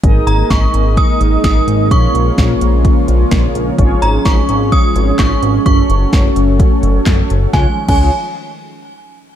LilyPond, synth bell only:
\new Staff \with { instrumentName = "Synth bell" } { \time 4/4 \key des \major \tempo 4 = 128 r8 bes''8 des'''4 ees'''4 ees'''4 | des'''2 r2 | r8 bes''8 des'''4 ees'''4 des'''4 | des'''2 r2 |
aes''16 r8 aes''8 r2 r8. | }